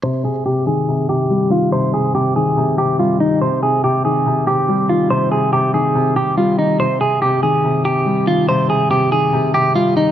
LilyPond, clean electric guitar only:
\new Staff \with { instrumentName = "Clean electric guitar" } { \time 4/4 \key c \minor \tempo 4 = 142 c''8 aes'8 g'8 aes'4 g'4 f'8 | c''8 aes'8 g'8 aes'4 g'8 f'8 ees'8 | c''8 aes'8 g'8 aes'4 g'4 f'8 | c''8 aes'8 g'8 aes'4 g'8 f'8 ees'8 |
c''8 aes'8 g'8 aes'4 g'4 f'8 | c''8 aes'8 g'8 aes'4 g'8 f'8 ees'8 | }